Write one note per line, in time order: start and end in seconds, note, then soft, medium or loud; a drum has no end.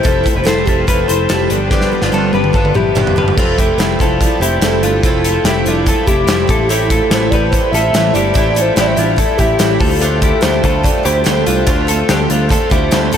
0.00 0.24 F3 medium
0.00 0.25 A3 medium
0.00 0.47 C5 loud
0.04 0.22 F1 medium
0.04 0.24 C4 medium
0.04 0.22 E4 medium
0.04 0.35 F4 medium
0.04 0.34 A4 medium
0.04 kick loud
0.04 closed hi-hat medium
0.24 0.44 A3 soft
0.24 0.44 C4 soft
0.24 0.44 E4 medium
0.24 kick medium
0.24 closed hi-hat medium
0.36 0.44 F1 loud
0.36 0.47 G4 soft
0.36 0.46 B4 medium
0.44 0.63 F1 medium
0.44 0.65 F3 medium
0.44 0.66 A3 medium
0.44 0.66 C4 medium
0.44 0.64 E4 medium
0.44 0.67 A4 loud
0.44 snare loud
0.44 closed hi-hat medium
0.48 0.67 A4 medium
0.48 0.68 C5 medium
0.65 0.84 F1 medium
0.65 0.87 A3 soft
0.65 0.88 C4 soft
0.65 0.87 E4 medium
0.65 0.87 F4 medium
0.65 0.86 G4 medium
0.65 0.88 A4 medium
0.65 kick medium
0.65 closed hi-hat medium
0.86 1.05 F1 medium
0.86 1.08 F3 medium
0.86 1.09 A3 medium
0.86 1.08 C4 medium
0.86 1.07 E4 medium
0.86 1.09 F4 medium
0.86 1.32 A4 loud
0.86 1.08 B4 medium
0.86 kick medium
0.86 closed hi-hat medium
1.08 1.26 F1 medium
1.08 1.30 A3 soft
1.08 1.30 C4 soft
1.08 1.29 E4 medium
1.08 1.29 A4 soft
1.08 1.29 C5 medium
1.08 closed hi-hat medium
1.29 1.47 F1 loud
1.29 1.50 F3 medium
1.29 1.51 A3 medium
1.29 1.51 C4 medium
1.29 1.50 E4 medium
1.29 1.50 F4 medium
1.29 1.70 G4 medium
1.29 1.50 A4 medium
1.29 snare loud
1.29 closed hi-hat medium
1.50 1.84 G1 medium
1.50 1.71 F3 soft
1.50 1.72 B3 soft
1.50 1.71 D4 soft
1.50 1.71 D4 medium
1.50 1.70 G4 medium
1.50 closed hi-hat medium
1.71 1.92 G2 medium
1.71 1.92 D3 medium
1.71 1.92 F3 medium
1.71 1.92 B3 medium
1.71 2.01 D4 medium
1.71 1.90 D4 medium
1.71 2.00 G4 medium
1.71 2.09 B4 loud
1.71 kick loud
1.71 snare soft
1.81 snare soft
1.92 2.13 F3 soft
1.92 2.13 B3 soft
1.92 2.12 D4 medium
2.02 2.11 G1 medium
2.02 2.13 D4 soft
2.02 2.13 F4 medium
2.02 snare soft
2.12 2.30 G1 medium
2.12 2.33 G2 medium
2.12 2.33 D3 medium
2.12 2.34 F3 medium
2.12 2.33 B3 medium
2.12 2.32 D4 medium
2.12 2.34 F4 medium
2.12 2.34 A4 medium
2.12 2.72 B4 medium
2.12 high tom medium
2.33 2.50 G1 medium
2.33 2.53 F3 soft
2.33 2.54 B3 soft
2.33 2.54 D4 soft
2.33 2.55 G4 medium
2.33 2.54 B4 medium
2.33 high tom medium
2.44 mid tom medium
2.53 2.71 G1 medium
2.53 2.74 D3 medium
2.53 2.75 F3 medium
2.53 2.75 B3 medium
2.53 2.73 D4 medium
2.53 2.75 F4 soft
2.53 2.75 A4 medium
2.53 kick medium
2.65 mid tom medium
2.74 2.92 G1 medium
2.74 2.95 F3 soft
2.74 2.95 B3 medium
2.74 2.95 D4 medium
2.74 3.15 E4 medium
2.74 3.34 G4 medium
2.74 3.15 G4 medium
2.74 mid tom medium
2.95 3.13 G1 medium
2.95 3.16 G2 medium
2.95 3.16 D3 medium
2.95 3.17 F3 medium
2.95 3.16 B3 medium
2.95 3.15 D4 medium
2.95 mid tom medium
3.07 floor tom medium
3.16 3.33 G1 medium
3.16 3.36 F3 soft
3.16 3.38 B3 medium
3.16 3.37 D4 medium
3.16 3.38 G4 medium
3.16 3.38 B4 medium
3.16 floor tom medium
3.28 floor tom medium
3.37 3.71 F1 loud
3.37 3.58 F3 medium
3.37 3.59 A3 medium
3.37 3.58 C4 medium
3.37 3.59 C4 medium
3.37 3.57 E4 medium
3.37 3.59 F4 medium
3.37 3.56 A4 medium
3.37 kick loud
3.37 crash medium
3.58 3.77 A3 soft
3.58 3.78 C4 soft
3.58 3.79 E4 medium
3.58 3.98 E4 medium
3.58 3.98 G4 medium
3.58 3.80 A4 medium
3.58 kick medium
3.58 closed hi-hat medium
3.78 3.95 F1 medium
3.78 3.99 F3 medium
3.78 4.00 A3 medium
3.78 3.99 C4 medium
3.78 3.98 E4 medium
3.78 4.20 C5 medium
3.78 snare loud
3.78 closed hi-hat medium
3.99 4.26 F1 medium
3.99 4.21 A3 soft
3.99 4.21 C4 soft
3.99 4.20 E4 soft
3.99 4.40 F4 medium
3.99 4.40 A4 medium
3.99 kick medium
3.99 closed hi-hat medium
4.20 4.42 F3 medium
4.20 4.42 A3 medium
4.20 4.42 C4 medium
4.20 4.40 E4 medium
4.20 4.42 D5 loud
4.20 kick medium
4.20 closed hi-hat medium
4.40 4.58 F1 medium
4.40 4.62 A3 soft
4.40 4.63 C4 soft
4.40 4.62 E4 medium
4.40 4.81 E4 medium
4.40 4.81 G4 medium
4.40 4.61 C5 medium
4.40 closed hi-hat medium
4.61 4.82 F1 medium
4.61 4.83 F3 medium
4.61 4.84 A3 medium
4.61 4.83 C4 medium
4.61 5.01 A4 medium
4.61 snare loud
4.61 closed hi-hat medium
4.65 4.82 E4 medium
4.82 4.99 G1 medium
4.82 5.04 A3 soft
4.82 5.04 C4 soft
4.82 5.04 D4 medium
4.82 5.04 E4 soft
4.82 5.03 F4 medium
4.82 closed hi-hat medium
5.03 5.38 F1 medium
5.03 5.25 F3 medium
5.03 5.25 A3 medium
5.03 5.25 C4 medium
5.03 5.26 C4 medium
5.03 5.24 E4 medium
5.03 5.25 F4 medium
5.03 5.83 A4 loud
5.03 kick loud
5.03 closed hi-hat medium
5.24 5.45 A3 soft
5.24 5.46 C4 soft
5.24 5.46 E4 medium
5.24 5.46 F4 medium
5.24 5.45 A4 medium
5.24 closed hi-hat medium
5.44 5.62 F1 medium
5.44 5.66 F3 medium
5.44 5.67 A3 medium
5.44 5.66 C4 medium
5.44 5.67 E4 medium
5.44 5.64 E4 medium
5.44 5.67 G4 medium
5.44 snare loud
5.44 closed hi-hat medium
5.65 5.91 F1 medium
5.65 5.86 A3 soft
5.65 5.87 C4 medium
5.65 5.88 D4 medium
5.65 5.87 E4 medium
5.65 5.88 F4 medium
5.65 closed hi-hat medium
5.86 6.07 F3 medium
5.86 6.08 A3 medium
5.86 6.07 C4 medium
5.86 6.05 E4 medium
5.86 6.08 F4 medium
5.86 6.08 A4 medium
5.86 kick medium
5.86 closed hi-hat medium
6.06 6.25 F1 medium
6.06 6.26 A3 soft
6.06 6.27 C4 soft
6.06 6.28 E4 medium
6.06 6.47 E4 medium
6.06 6.71 G4 loud
6.06 6.47 G4 medium
6.06 kick medium
6.06 closed hi-hat medium
6.27 6.45 F1 loud
6.27 6.49 F3 medium
6.27 6.49 A3 medium
6.27 6.48 C4 medium
6.27 6.46 E4 medium
6.27 snare loud
6.27 closed hi-hat medium
6.47 7.00 A1 medium
6.47 6.69 A3 soft
6.47 6.69 C4 soft
6.47 6.69 E4 soft
6.47 6.70 E4 medium
6.47 6.70 A4 medium
6.47 kick loud
6.47 closed hi-hat medium
6.69 6.90 A2 medium
6.69 6.91 E3 medium
6.69 6.91 A3 medium
6.69 6.90 C4 medium
6.69 6.89 E4 medium
6.69 6.91 E4 medium
6.69 6.91 G4 medium
6.69 6.89 A4 medium
6.69 closed hi-hat medium
6.90 7.11 A3 soft
6.90 7.11 C4 medium
6.90 7.11 E4 medium
6.90 7.31 F4 medium
6.90 7.13 A4 loud
6.90 7.30 A4 medium
6.90 kick medium
6.90 closed hi-hat medium
7.10 7.28 A1 medium
7.10 7.32 A2 medium
7.10 7.32 E3 medium
7.10 7.32 A3 medium
7.10 7.33 C4 medium
7.10 7.31 E4 medium
7.10 7.32 C5 loud
7.10 snare loud
7.10 closed hi-hat medium
7.31 7.58 A1 medium
7.31 7.53 C4 soft
7.31 7.53 E4 medium
7.31 7.72 B4 medium
7.31 7.50 D5 loud
7.31 kick medium
7.31 closed hi-hat medium
7.35 7.52 A3 soft
7.35 7.72 G4 medium
7.51 7.73 E3 medium
7.51 7.74 A3 medium
7.51 7.73 C4 medium
7.51 7.72 E4 medium
7.51 7.71 C5 loud
7.51 kick medium
7.51 closed hi-hat medium
7.72 7.90 A1 medium
7.72 7.95 C4 soft
7.72 7.94 E4 medium
7.72 8.13 F4 medium
7.72 8.13 A4 medium
7.72 8.16 E5 loud
7.72 closed hi-hat medium
7.76 7.94 A3 soft
7.93 8.11 A1 loud
7.93 8.15 A2 medium
7.93 8.15 E3 medium
7.93 8.16 A3 medium
7.93 8.14 C4 medium
7.93 8.13 E4 medium
7.93 snare loud
7.93 closed hi-hat medium
8.14 8.31 G1 medium
8.14 8.34 A3 soft
8.14 8.34 C4 soft
8.14 8.34 E4 medium
8.14 8.36 E4 medium
8.14 8.36 G4 medium
8.14 8.63 D5 loud
8.14 closed hi-hat medium
8.34 8.70 A1 medium
8.34 8.56 A2 medium
8.34 8.56 E3 medium
8.34 8.56 A3 medium
8.34 8.56 C4 medium
8.34 8.53 E4 medium
8.34 8.57 G4 medium
8.34 kick loud
8.34 closed hi-hat medium
8.38 8.57 E4 medium
8.55 8.75 A3 soft
8.55 8.77 C4 soft
8.55 8.76 E4 medium
8.55 8.78 F4 soft
8.55 8.78 A4 soft
8.55 closed hi-hat medium
8.61 8.75 C5 medium
8.76 8.94 A1 medium
8.76 8.97 A2 medium
8.76 8.98 E3 medium
8.76 8.97 A3 medium
8.76 8.96 C4 medium
8.76 8.95 E4 medium
8.76 8.99 E4 medium
8.76 8.98 G4 medium
8.76 8.82 C5 loud
8.76 snare loud
8.76 closed hi-hat medium
8.81 8.89 D5 medium
8.87 8.96 C5 medium
8.96 9.23 A1 medium
8.96 9.17 A3 soft
8.96 9.17 C4 soft
8.96 9.20 D4 medium
8.96 9.18 E4 soft
8.96 9.19 F4 medium
8.96 9.39 E5 loud
8.96 closed hi-hat medium
9.16 9.38 E3 soft
9.16 9.39 A3 medium
9.16 9.38 C4 medium
9.16 9.37 E4 medium
9.16 9.39 E4 medium
9.16 9.40 A4 medium
9.16 kick medium
9.16 closed hi-hat medium
9.37 9.56 A1 medium
9.37 9.59 A3 soft
9.37 9.60 C4 soft
9.37 9.60 E4 medium
9.37 9.79 E4 medium
9.37 9.99 G4 loud
9.37 9.79 G4 medium
9.37 kick medium
9.37 closed hi-hat medium
9.59 9.77 A1 loud
9.59 9.80 A2 medium
9.59 9.81 E3 medium
9.59 9.80 A3 medium
9.59 9.80 C4 medium
9.59 9.79 E4 medium
9.59 snare loud
9.59 closed hi-hat medium
9.80 10.32 D2 medium
9.80 10.01 A3 soft
9.80 10.02 C4 soft
9.80 10.01 F4 medium
9.80 10.00 F4 medium
9.80 10.01 A4 medium
9.80 kick medium
9.80 open hi-hat medium
10.00 10.23 D3 medium
10.00 10.23 A3 medium
10.00 10.22 C4 medium
10.00 10.23 D4 medium
10.00 10.22 F4 medium
10.00 10.20 A4 medium
10.00 closed hi-hat medium
10.04 10.20 F4 medium
10.20 10.41 C4 soft
10.20 10.62 E4 medium
10.20 10.42 F4 medium
10.20 10.62 G4 medium
10.20 10.43 A4 medium
10.20 kick medium
10.20 closed hi-hat medium
10.25 10.41 A3 soft
10.41 10.60 D2 loud
10.41 10.63 D3 medium
10.41 10.63 A3 medium
10.41 10.64 C4 medium
10.41 10.62 F4 medium
10.41 10.86 C5 loud
10.41 snare loud
10.41 closed hi-hat medium
10.63 10.89 D2 medium
10.63 10.82 A3 soft
10.63 10.83 C4 soft
10.63 10.84 F4 soft
10.63 11.03 F4 medium
10.63 11.03 A4 medium
10.63 kick medium
10.63 closed hi-hat medium
10.83 11.05 D3 medium
10.83 11.05 A3 medium
10.83 11.04 C4 medium
10.83 11.02 F4 medium
10.83 11.05 D5 loud
10.83 kick medium
10.83 closed hi-hat loud
11.03 11.23 D2 loud
11.03 11.23 A3 soft
11.03 11.25 C4 soft
11.03 11.45 E4 medium
11.03 11.25 F4 soft
11.03 11.44 G4 medium
11.03 11.25 C5 loud
11.03 closed hi-hat medium
11.24 11.43 D2 medium
11.24 11.46 D3 medium
11.24 11.46 A3 medium
11.24 11.47 C4 medium
11.24 11.45 F4 medium
11.24 11.65 A4 medium
11.24 snare loud
11.24 closed hi-hat medium
11.46 11.64 C2 medium
11.46 11.66 A3 soft
11.46 11.67 C4 soft
11.46 11.67 D4 medium
11.46 11.67 F4 medium
11.46 11.65 F4 medium
11.46 closed hi-hat medium
11.67 12.02 D2 loud
11.67 11.88 D3 medium
11.67 11.88 A3 medium
11.67 11.88 C4 medium
11.67 11.88 D4 medium
11.67 11.88 F4 medium
11.67 11.86 F4 medium
11.67 12.47 A4 loud
11.67 kick loud
11.67 closed hi-hat medium
11.87 12.08 A3 soft
11.87 12.09 C4 medium
11.87 12.08 F4 medium
11.87 12.09 F4 soft
11.87 12.09 A4 medium
11.87 closed hi-hat medium
12.09 12.26 D2 medium
12.09 12.30 D3 medium
12.09 12.30 A3 medium
12.09 12.30 C4 medium
12.09 12.31 D4 medium
12.09 12.29 F4 medium
12.09 12.30 G4 medium
12.09 snare loud
12.09 closed hi-hat medium
12.30 12.55 D2 medium
12.30 12.49 A3 soft
12.30 12.50 C4 soft
12.30 12.52 D4 medium
12.30 12.51 F4 medium
12.30 12.50 F4 medium
12.30 closed hi-hat medium
12.49 12.71 D3 medium
12.49 12.71 A3 medium
12.49 12.70 C4 medium
12.49 12.71 F4 medium
12.49 12.69 F4 medium
12.49 12.71 A4 medium
12.49 kick medium
12.49 closed hi-hat loud
12.70 12.88 D2 medium
12.70 12.90 A3 soft
12.70 12.90 C4 soft
12.70 13.11 E4 medium
12.70 12.91 F4 medium
12.70 13.10 G4 medium
12.70 13.17 C5 loud
12.70 kick medium
12.70 closed hi-hat medium
12.91 13.09 D2 loud
12.91 13.12 D3 medium
12.91 13.12 A3 medium
12.91 13.12 C4 medium
12.91 13.10 F4 medium
12.91 snare loud
12.91 closed hi-hat medium
13.11 13.17 F1 medium
13.11 13.17 A3 soft
13.11 13.17 C4 soft
13.11 13.17 F4 medium
13.11 13.17 A4 medium
13.11 closed hi-hat medium